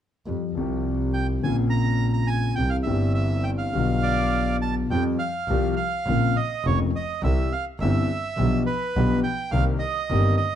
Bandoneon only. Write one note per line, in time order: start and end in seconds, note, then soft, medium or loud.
1.14 1.27 G5 medium
1.44 1.56 G#5 medium
1.70 2.12 A#5 medium
2.13 2.29 A#5 medium
2.27 2.55 G#5 medium
2.55 2.70 G5 medium
2.70 2.77 F5 medium
2.83 3.13 E5 medium
3.14 3.45 E5 medium
3.44 3.50 G5 medium
3.58 4.57 F5 medium
4.03 4.57 D5 medium
4.62 4.75 A5 medium
4.91 5.04 G5 medium
5.19 5.75 F5 medium
5.76 6.37 F5 medium
6.36 6.66 D#5 medium
6.66 6.79 C#5 medium
6.96 7.22 D#5 medium
7.24 7.53 E5 medium
7.52 7.65 F5 medium
7.81 8.63 E5 medium
8.66 9.20 B4 medium
9.24 9.51 G5 medium
9.51 9.65 F5 medium
9.79 10.36 D#5 medium
10.37 10.55 D#5 medium